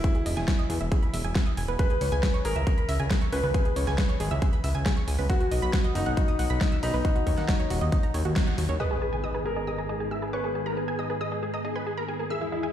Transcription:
Already playing: E4
0.04 G#4, kick, closed hi-hat
0.15 G#4, closed hi-hat
0.26 E1 D#5, open hi-hat
0.37 E1 G#5, snare, closed hi-hat
0.48 G#4, kick, snare, closed hi-hat
0.59 D#5, closed hi-hat
0.70 E2 G#4, open hi-hat
0.81 E1 E5, closed hi-hat
0.92 G#4, kick, closed hi-hat
1.03 B5, closed hi-hat
1.13 E1 E5, open hi-hat
1.24 E1 G#5, closed hi-hat
1.35 G#4, kick, snare, closed hi-hat
1.46 D#6, closed hi-hat
1.57 E1 G#5, open hi-hat
1.68 E1 B4, closed hi-hat
1.79 G#4 B4, kick, closed hi-hat
1.90 G#4, closed hi-hat
2.01 C#2 C#5, open hi-hat
2.12 C#2 G#5, closed hi-hat
2.23 G#4, kick, snare, closed hi-hat
2.34 C#5, closed hi-hat
2.45 G#1 G#4 A#4, open hi-hat
2.56 C#2 E5
2.67 G#4, kick, closed hi-hat
2.78 B5, closed hi-hat
2.89 C#2 E5, open hi-hat
3.00 C#2 G#5, closed hi-hat
3.11 G#4, kick, snare, closed hi-hat
3.22 C#6, closed hi-hat
3.32 C#2 B4 G#5, open hi-hat
3.43 C#2 B4
3.54 G#4, kick, closed hi-hat
3.65 G#4, closed hi-hat
3.76 C#2 C#5, open hi-hat
3.87 C#2 G#5, snare, closed hi-hat
3.98 G#4, kick, snare, closed hi-hat
4.09 C#5, closed hi-hat
4.20 G#1 G#4, open hi-hat
4.31 C#2 E5, closed hi-hat
4.42 G#4, kick, closed hi-hat
4.53 B5, closed hi-hat
4.64 C#2 E5, open hi-hat
4.75 C#2 G#5, closed hi-hat
4.86 G#4, kick, snare, closed hi-hat
4.97 C#6, closed hi-hat
5.08 C#2 G#5, open hi-hat
5.19 C#2 B4
5.30 F#4, kick, closed hi-hat
5.41 F#4, closed hi-hat
5.51 B1 D#5, open hi-hat
5.62 B1 B5, closed hi-hat
5.73 F#4, kick, snare, closed hi-hat
5.84 D#5, closed hi-hat
5.95 F#1 D#4 F#4, open hi-hat
6.06 B1 F#5
6.17 F#4, kick, closed hi-hat
6.28 D#6, closed hi-hat
6.39 B1 F#5, open hi-hat
6.50 B1 B5, closed hi-hat
6.61 F#4, kick, snare, closed hi-hat
6.72 E6, closed hi-hat
6.83 B1 D#4 B5, open hi-hat
6.94 B1 B4
7.05 F#4, kick, closed hi-hat
7.16 F#4, closed hi-hat
7.27 D#2 C#5, kick, open hi-hat
7.38 D#2 F#5, snare, closed hi-hat
7.49 F#4, kick, snare, closed hi-hat
7.59 C#5, closed hi-hat
7.70 D#1 F#4, open hi-hat
7.81 D#2 D#5, closed hi-hat
7.92 F#4, kick, closed hi-hat
8.03 A#5, closed hi-hat
8.14 D#2 C#5, open hi-hat
8.25 D#2 F#4, closed hi-hat
8.36 F#4, kick, snare, closed hi-hat
8.47 F#5, closed hi-hat
8.58 D#2 F#4, open hi-hat
8.69 D#2 C#5
8.80 G#2 D#3 B3 G#4 B4 D#5 D#6, impact
8.91 G#4 G#5
9.02 G#4 B4 G#5
9.13 G#4 G#5
9.24 G#4 D#5 D#6, closed hi-hat
9.35 G#4 B4 G#5
9.45 G#4 A#4 G#5
9.56 G#4 D#5 G#5
9.67 G#4 D#5 D#6
9.78 G#4 G#5 A#5
9.89 G#4 D#5 G#5
10.00 G#4 G#5
10.11 G#4 E5 E6, closed hi-hat
10.22 G#4 G#5 B5
10.33 B4 C#5 G#5 C#6
10.44 G#4 A#4 G#5
10.55 G#4 G#5, closed hi-hat
10.66 G#4 A#4 A#5
10.77 G#4 B4 G#5
10.88 G#4 G#5
10.99 G#4 D#5 D#6, closed hi-hat
11.10 G#4 B4 G#5
11.21 G#4 D#5 D#6
11.32 G#4 D#5 G#5
11.43 G#4 G#5, closed hi-hat
11.54 D#5 A#5 D#6
11.65 G#4 D#5 G#5
11.76 B4 G#5 B5
11.87 G#4 G#5, closed hi-hat
11.97 A#4 A#5 B5
12.08 G#4 G#5
12.19 G#4 A#4 G#5
12.30 E2 E3 G#3 G#4 D#5 E5 E6
12.41 E4 G#4 E5
12.52 E4 D#5 E5, closed hi-hat
12.63 E4 E5 G#5

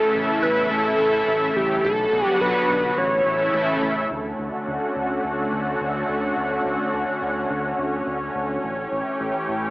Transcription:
Already playing: C#3 E3 A3 E4 A4
0.14 A1
0.43 A1 B4
0.71 A1 A4
0.99 A1
1.27 A1
1.56 A1 G4
1.84 B1 D3 F#3 B3 F#4 A4
2.12 B1
2.25 G4
2.41 B1 B4
2.69 B1
2.97 A1 C#3 E3 A3 E4 C#5
3.26 A1
3.54 A1
3.82 A1
4.10 D2 D3 A3 C#4 F#4
4.39 D2
4.67 D2
4.95 D2
5.24 D2
5.52 D2
5.80 D2
6.09 D2
6.37 D2
6.65 D2
6.94 D2
7.22 D2
7.50 D2
7.78 D2
8.06 D2
8.35 D2
8.63 A1 E3 A3 G4
8.91 A1
9.20 A1
9.48 A1

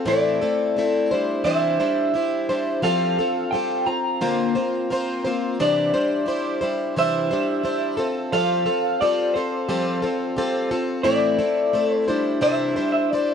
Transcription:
0.05 A2 E3 A3 C4 E4 A4 D5
0.41 A3 C4 E4 A4
0.76 A3 C4 E4 A4
1.11 G3 D4 E4 C5
1.44 C3 E3 G3 D4 E4 C5 E5
1.80 G3 D4 E4 C5
2.14 G3 D4 E4 C5
2.49 G3 D4 E4 C5
2.82 F3 G3 C4 F4 A4 F5
3.19 C4 F4 A4
3.51 G3 C4 F4 G5
3.55 A4
3.86 C4 F4 A#5
4.21 A#2 D3 A#3 C4 F4 C5
4.55 A#3 C4 F4 C5
4.90 A#3 C4 F4 C5
5.25 A#3 C4 F4 C5
5.60 C3 E3 G3 D4 E4 C5 D5
5.93 G3 D4 E4 C5
6.26 G3 D4 E4 C5
6.61 G3 D4 E4 C5
6.96 C3 E3 G3 D4 E4 C5 E5
7.31 G3 D4 E4 C5
7.63 G3 D4 E4 C5
7.97 C4 F4 A4
8.32 F3 G3 C4 F4 A4 F5
8.66 C4 F4 A4
9.01 G3 C4 F4 A4 D5
9.34 C4 F4 A4 C5
9.69 F3 G3 C4 F4 A4
10.02 C4 F4 A4
10.37 G3 C4 F4 A4
10.71 C4 F4 A4
11.03 A2 E3 A3 C4 E4 A4 D5
11.38 A3 C4 E4 A4
11.73 A3 C4 E4 A4
11.93 C5
12.08 G3 D4 E4 C5
12.41 C3 E3 G3 D4 E4 C5 E5
12.76 G3 D4 E4 C5
12.92 E5
13.10 G3 D4 E4 D5
13.14 C5

